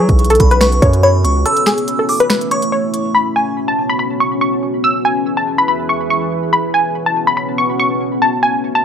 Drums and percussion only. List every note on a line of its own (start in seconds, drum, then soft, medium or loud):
0.09 kick loud
0.09 closed hi-hat medium
0.19 closed hi-hat medium
0.24 closed hi-hat medium
0.30 closed hi-hat medium
0.35 closed hi-hat medium
0.40 kick medium
0.40 closed hi-hat medium
0.51 closed hi-hat medium
0.61 finger snap medium
0.61 snare loud
0.61 closed hi-hat medium
0.72 closed hi-hat medium
0.82 kick loud
0.82 closed hi-hat medium
0.93 closed hi-hat medium
1.25 closed hi-hat medium
1.46 closed hi-hat medium
1.57 closed hi-hat medium
1.66 finger snap medium
1.66 snare medium
1.66 closed hi-hat medium
1.78 closed hi-hat medium
1.88 closed hi-hat medium
2.09 open hi-hat loud
2.20 closed hi-hat medium
2.30 finger snap loud
2.30 snare loud
2.30 closed hi-hat medium
2.41 closed hi-hat medium
2.51 closed hi-hat medium
2.62 closed hi-hat medium
2.94 closed hi-hat medium